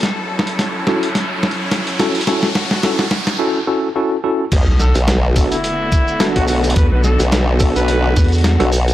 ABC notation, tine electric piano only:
X:1
M:4/4
L:1/16
Q:"Swing 16ths" 1/4=107
K:Bm
V:1 name="Tine electric piano"
z6 [CEFA] z6 z [CEFA] z | [CEFA] z3 [CEFA] z3 [CEFA] z [CEFA] z [CEFA] z [CEFA] z | z6 [B,DFA] z4 z [B,DFA]4- | [B,DFA]6 [B,DFA]6- [B,DFA] [B,DFA] z2 |]